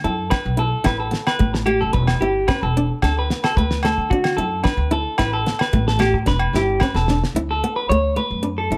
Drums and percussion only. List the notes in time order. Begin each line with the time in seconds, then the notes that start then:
0.31 kick, snare, low agogo
0.85 kick, snare, low agogo
1.14 snare
1.27 snare, low agogo
1.40 kick
1.55 snare
1.66 low agogo
1.94 kick
2.07 snare, low agogo
2.48 kick, snare, low agogo
3.02 kick, snare, low agogo
3.30 snare
3.44 snare, low agogo
3.57 kick
3.71 snare
3.83 snare, low agogo
4.11 kick
4.24 snare, low agogo
4.64 kick, snare, low agogo
5.18 kick, snare, low agogo
5.47 snare
5.59 snare, low agogo
5.74 kick
5.88 snare
6.00 snare, low agogo
6.27 kick, snare
6.39 low agogo
6.54 snare
6.80 kick, snare, low agogo
6.95 snare
7.08 snare
7.24 snare